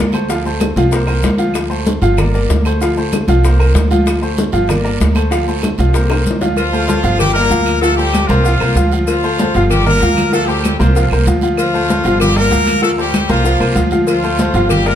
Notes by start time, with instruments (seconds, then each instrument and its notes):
Already playing: upright bass D2
0.12 upright piano A3 A4 C5, high bongo, short guiro, claves, maracas
0.28 upright piano F3 F4 F5, high bongo, high conga, long guiro, maracas
0.45 upright piano A3 A4 C5, high conga, maracas
0.60 high bongo, high conga, short guiro, claves, maracas
0.76 upright bass C2, upright piano F3 F4 F5, high bongo, high conga, short guiro, maracas
0.91 upright piano A#3 A#4 C5, high bongo, high conga, long guiro, maracas
1.07 upright piano A#3 A#4 C5, high bongo, high conga, claves, maracas
1.23 upright bass D2, high bongo, low bongo, high conga, short guiro, maracas
1.38 upright piano F3 F4 F5, high bongo, short guiro, maracas
1.54 high bongo, high conga, long guiro, claves, maracas
1.70 upright piano A3 A4 C5, high conga, maracas
1.86 high bongo, high conga, short guiro, maracas
2.02 upright bass G1, upright piano F3 F4 F5, high bongo, high conga, short guiro, maracas
2.17 upright piano A#3 A#4 D5, high bongo, high conga, low conga, long guiro, claves, maracas
2.34 upright piano A#3 A#4 D5, high bongo, high conga, maracas
2.49 upright bass D2, high bongo, low bongo, high conga, short guiro, maracas
2.65 upright piano A3 A4 C5, high bongo, short guiro, claves, maracas
2.81 upright piano F3 F4 F5, high bongo, high conga, long guiro, maracas
2.97 upright piano A3 A4 C5, high conga, maracas
3.12 high bongo, high conga, short guiro, claves, maracas
3.28 upright bass C2, upright piano F3 F4 F5, high bongo, high conga, short guiro, maracas
3.43 upright piano A#3 A#4 C5, high bongo, high conga, long guiro, maracas
3.59 upright piano A#3 A#4 C5, high bongo, high conga, claves, maracas
3.74 upright bass D2, high bongo, low bongo, high conga, short guiro, maracas
3.91 upright piano F3 F4 F5, high bongo, high conga, short guiro, maracas
4.06 high bongo, high conga, long guiro, claves, maracas
4.22 upright piano A3 A4 C5, high conga, maracas
4.37 high bongo, high conga, short guiro, maracas
4.52 upright bass G1, upright piano F3 F4 F5, high bongo, high conga, short guiro, maracas
4.68 upright piano A#3 A#4 D5, high bongo, high conga, low conga, long guiro, claves, maracas
4.84 upright piano A#3 A#4 D5, high bongo, high conga, maracas
5.00 upright bass D2, high bongo, low bongo, high conga, short guiro, maracas
5.15 upright piano A3 A4 C5, high bongo, short guiro, claves, maracas
5.30 upright piano F3 F4 F5, high bongo, high conga, long guiro, maracas
5.47 upright piano A3 A4 C5, high conga, maracas
5.62 high bongo, high conga, short guiro, claves, maracas
5.78 upright bass C2, upright piano F3 F4 F5, high bongo, high conga, short guiro, maracas
5.94 upright piano A#3 A#4 C5, high bongo, high conga, long guiro, maracas
6.10 upright piano A#3 A#4 C5, high bongo, high conga, claves, maracas
6.25 upright bass D2, high conga, short guiro, maracas
6.31 low bongo
6.41 upright piano F3 F4 F5, low bongo, high conga, short guiro, maracas
6.56 horn section F3 F4, cowbell, high conga, long guiro, claves, maracas
6.73 upright piano A3 A4 C5, high conga, maracas
6.88 upright piano A3 A4 C5, cowbell, high conga, short guiro, maracas
7.03 upright bass G1, upright piano F3 F4 F5, cowbell, high conga, short guiro, maracas
7.19 horn section G3 G4, cowbell, high conga, low conga, long guiro, claves, maracas
7.34 horn section A#3 A#4, upright piano A#3 A#4 D5, high conga, maracas
7.49 upright bass D2, upright piano F3 F4 F5, cowbell, high conga, short guiro, maracas
7.66 cowbell, short guiro, claves, maracas
7.81 upright piano F3 F4 F5, horn section A3 A4, cowbell, high conga, long guiro, maracas
7.97 horn section G3 G4, upright piano A3 A4 C5, high conga, maracas
8.13 cowbell, high conga, short guiro, claves, maracas
8.27 upright bass C2, horn section F3 F4, upright piano A#3 A#4 C5, high conga, short guiro, maracas
8.44 upright piano F3 F4 F5, cowbell, high conga, long guiro, maracas
8.60 upright bass C2, upright piano A#3 A#4 C5, high conga, claves, maracas
8.75 upright bass D2, upright piano F3 F4 F5, cowbell, high conga, short guiro, maracas
8.92 upright piano F3 F4 F5, short guiro, maracas
9.07 horn section F3 F4, cowbell, high conga, long guiro, claves, maracas
9.23 upright piano A3 A4 C5, high conga, maracas
9.39 upright piano A3 A4 C5, cowbell, high conga, short guiro, maracas
9.54 upright bass G1, upright piano F3 F4 F5, cowbell, high conga, short guiro, maracas
9.70 horn section G3 G4, cowbell, high conga, low conga, long guiro, claves, maracas
9.86 upright piano A#3 A#4 D5, horn section A#3 A#4, high conga, low conga, maracas
10.01 upright bass D2, upright piano F3 F4 F5, cowbell, high conga, short guiro, maracas
10.17 cowbell, high conga, short guiro, claves, maracas
10.32 upright piano F3 F4 F5, horn section A3 A4, cowbell, high conga, long guiro, maracas
10.47 horn section G3 G4, upright piano A3 A4 C5, high conga, maracas
10.64 cowbell, high conga, short guiro, claves, maracas
10.79 upright bass C2, horn section F3 F4, upright piano A#3 A#4 C5, high conga, short guiro, maracas
10.95 upright piano F3 F4 F5, cowbell, high conga, long guiro, maracas
11.11 upright bass C2, upright piano A#3 A#4 C5, high conga, claves, maracas
11.26 upright bass D2, upright piano F3 F4 F5, cowbell, high conga, short guiro, maracas
11.41 upright piano F3 F4 F5, short guiro, maracas
11.57 horn section F3 F4, cowbell, high conga, long guiro, claves, maracas
11.74 upright piano A3 A4 C5, high conga, maracas
11.88 upright piano A3 A4 C5, cowbell, high conga, short guiro, maracas
12.04 upright bass G1, upright piano F3 F4 F5, cowbell, high conga, short guiro, maracas
12.20 horn section G3 G4, cowbell, high conga, low conga, long guiro, claves, maracas
12.36 upright piano A#3 A#4 D5, horn section A#3 A#4, high conga, maracas
12.50 upright bass D2, upright piano F3 F4 F5, cowbell, high conga, short guiro, maracas
12.67 cowbell, high conga, short guiro, claves, maracas
12.81 upright piano F3 F4 F5, horn section A3 A4, cowbell, high conga, long guiro, maracas
12.97 horn section G3 G4, upright piano A3 A4 C5, high conga, maracas
13.13 cowbell, high conga, short guiro, claves, maracas
13.29 upright bass C2, horn section F3 F4, upright piano A#3 A#4 C5, high conga, short guiro, maracas
13.44 upright piano F3 F4 F5, cowbell, high conga, long guiro, maracas
13.60 upright bass C2, upright piano A#3 A#4 C5, high conga, claves, maracas
13.75 upright bass D2, upright piano F3 F4 F5, cowbell, high conga, short guiro, maracas
13.91 upright piano F3 F4 F5, high conga, short guiro, maracas
14.07 horn section F3 F4, cowbell, long guiro, claves, maracas
14.23 upright piano A3 A4 C5, high conga, maracas
14.38 upright piano A3 A4 C5, cowbell, high conga, short guiro, maracas
14.54 upright bass G1, upright piano F3 F4 F5, cowbell, high conga, short guiro, maracas
14.69 horn section G3 G4, cowbell, high conga, low conga, long guiro, claves, maracas
14.85 upright piano A#3 A#4 D5, horn section A#3 A#4, high conga, maracas